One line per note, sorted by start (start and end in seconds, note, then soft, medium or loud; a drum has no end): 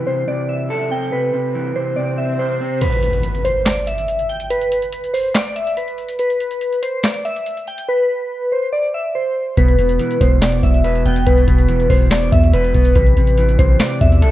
0.00 0.91 E3 medium
0.07 0.27 C3 medium
0.07 0.23 C5 medium
0.28 1.12 C3 medium
0.28 0.44 D5 medium
0.49 0.89 E5 medium
0.70 1.76 A4 medium
0.91 1.97 C4 medium
0.91 1.08 G5 medium
1.12 1.33 C3 medium
1.12 1.72 B4 loud
1.12 swell medium
1.34 1.75 C3 medium
1.55 2.60 E3 medium
1.76 1.96 C3 medium
1.76 1.92 C5 medium
1.96 2.82 C3 medium
1.96 2.13 D5 medium
2.18 2.34 E5 medium
2.39 2.79 C5 medium
2.39 2.81 C5 medium
2.61 2.82 C4 medium
2.81 3.41 B4 loud
2.81 closed hi-hat medium
2.81 crash loud
2.81 impact medium
2.92 closed hi-hat medium
3.03 closed hi-hat medium
3.13 closed hi-hat medium
3.23 closed hi-hat medium
3.35 closed hi-hat soft
3.45 3.61 C5 medium
3.45 closed hi-hat medium
3.66 3.82 D5 medium
3.66 snare loud
3.66 clap loud
3.66 closed hi-hat medium
3.76 closed hi-hat medium
3.87 4.27 E5 medium
3.87 closed hi-hat medium
3.98 closed hi-hat medium
4.08 closed hi-hat medium
4.19 closed hi-hat soft
4.29 4.45 G5 medium
4.29 closed hi-hat medium
4.40 closed hi-hat medium
4.50 5.10 B4 loud
4.50 closed hi-hat medium
4.61 closed hi-hat medium
4.72 closed hi-hat medium
4.82 closed hi-hat medium
4.92 closed hi-hat medium
5.04 closed hi-hat medium
5.14 5.30 C5 medium
5.14 open hi-hat medium
5.35 5.51 D5 medium
5.35 snare loud
5.35 clap medium
5.35 closed hi-hat medium
5.45 closed hi-hat medium
5.56 5.72 E5 medium
5.56 closed hi-hat medium
5.67 closed hi-hat medium
5.77 6.17 B4 medium
5.77 closed hi-hat medium
5.88 closed hi-hat soft
5.98 closed hi-hat medium
6.09 closed hi-hat medium
6.19 6.79 B4 loud
6.19 closed hi-hat medium
6.30 closed hi-hat medium
6.41 closed hi-hat medium
6.51 closed hi-hat medium
6.61 closed hi-hat medium
6.73 closed hi-hat medium
6.83 6.99 C5 medium
6.83 closed hi-hat medium
7.04 7.20 D5 medium
7.04 snare loud
7.04 clap medium
7.04 closed hi-hat medium
7.14 closed hi-hat medium
7.25 7.65 E5 medium
7.25 closed hi-hat medium
7.36 closed hi-hat medium
7.46 closed hi-hat medium
7.57 closed hi-hat soft
7.67 7.84 G5 medium
7.67 closed hi-hat medium
7.78 closed hi-hat medium
7.88 8.48 B4 loud
8.52 8.68 C5 medium
8.72 8.89 D5 medium
8.94 9.10 E5 medium
9.15 9.55 C5 medium
9.57 9.78 E1 loud
9.57 9.78 B2 medium
9.57 10.17 B4 medium
9.57 kick loud
9.57 closed hi-hat medium
9.68 closed hi-hat medium
9.79 9.99 E1 loud
9.79 10.20 B2 medium
9.79 closed hi-hat medium
9.89 closed hi-hat medium
9.99 11.06 E3 medium
9.99 closed hi-hat medium
10.11 closed hi-hat medium
10.21 10.61 E1 loud
10.21 10.41 B2 medium
10.21 10.37 C5 medium
10.21 kick medium
10.21 closed hi-hat medium
10.42 11.26 B2 medium
10.42 10.58 D5 medium
10.42 snare loud
10.42 clap medium
10.42 closed hi-hat medium
10.52 closed hi-hat medium
10.63 11.04 E1 loud
10.63 11.03 E5 medium
10.63 kick loud
10.63 closed hi-hat medium
10.74 closed hi-hat medium
10.84 11.90 B4 medium
10.84 closed hi-hat medium
10.95 closed hi-hat soft
11.05 11.26 E1 loud
11.05 12.11 B3 medium
11.05 11.22 G5 medium
11.05 closed hi-hat medium
11.16 closed hi-hat medium
11.26 11.47 E1 loud
11.26 11.46 B2 medium
11.26 11.86 B4 loud
11.26 kick loud
11.26 closed hi-hat medium
11.37 closed hi-hat medium
11.47 11.88 E1 loud
11.47 11.89 B2 medium
11.47 kick medium
11.47 closed hi-hat medium
11.58 closed hi-hat medium
11.69 12.74 E3 medium
11.69 closed hi-hat medium
11.80 closed hi-hat medium
11.90 12.30 E1 loud
11.90 12.10 B2 medium
11.90 12.06 C5 medium
11.90 kick medium
11.90 open hi-hat medium
12.11 12.95 B2 medium
12.11 12.27 D5 medium
12.11 snare loud
12.11 clap loud
12.11 closed hi-hat medium
12.21 closed hi-hat medium
12.32 12.52 E2 loud
12.32 12.48 E5 medium
12.32 kick loud
12.32 closed hi-hat medium
12.43 closed hi-hat medium
12.53 12.74 E1 loud
12.53 12.93 B4 medium
12.53 12.96 B4 loud
12.53 closed hi-hat medium
12.64 closed hi-hat soft
12.74 12.95 E1 loud
12.74 12.96 B3 medium
12.74 kick loud
12.74 closed hi-hat medium
12.85 closed hi-hat medium
12.95 13.16 A1 loud
12.95 13.16 C3 loud
12.95 13.55 B4 loud
12.95 kick loud
12.95 closed hi-hat medium
13.06 closed hi-hat medium
13.17 13.57 A1 loud
13.17 13.58 C3 medium
13.17 closed hi-hat medium
13.27 closed hi-hat medium
13.37 14.31 E3 medium
13.37 closed hi-hat medium
13.49 closed hi-hat medium
13.59 13.79 A1 loud
13.59 13.79 C3 medium
13.59 13.75 C5 medium
13.59 kick medium
13.59 closed hi-hat medium
13.80 14.31 C3 medium
13.80 13.96 D5 medium
13.80 snare loud
13.80 clap medium
13.80 closed hi-hat medium
13.90 closed hi-hat medium
14.01 14.24 E2 loud
14.01 14.31 E5 medium
14.01 kick loud
14.01 closed hi-hat medium
14.12 closed hi-hat medium
14.22 14.31 B1 loud
14.22 14.31 A4 loud
14.22 closed hi-hat medium